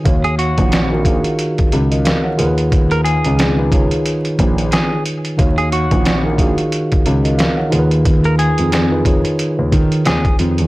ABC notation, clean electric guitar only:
X:1
M:4/4
L:1/16
Q:"Swing 16ths" 1/4=90
K:Dbmix
V:1 name="Clean electric guitar"
z A G6- G z6 z | z B A6- A z3 A2 z2 | z A G6- G z6 z | z B A6- A z3 A2 z2 |]